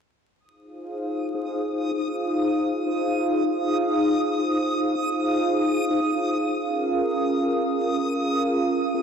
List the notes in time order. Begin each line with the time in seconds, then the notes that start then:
0.39 D#4 F4 G#4 C5 F5 D#6
1.34 D#4 F4 G#4 C5 F5
1.73 D#4 F4 G#4 C5 F5
1.92 D#4 F4 G#4 C5 F5
2.87 D#4 F4 G#4 C5 F5
3.44 D#4 F4 G#4 C5 F5
4.38 D#4 F4 G#4 C5 F5
4.76 D#4 F4 G#4 C5 F5
4.95 D#4 F4 G#4 C5 F5
5.90 D#4 F4 G#4 C5 F5
6.00 D#4 F4 G#4 C5 F5
6.47 C#4 F4 G#4 A#4 F5
7.42 C#4 F4 G#4 A#4 F5
7.80 C#4 F4 G#4 A#4 F5
7.99 C#4 F4 G#4 A#4 F5
8.94 C#4 F4 G#4 A#4 F5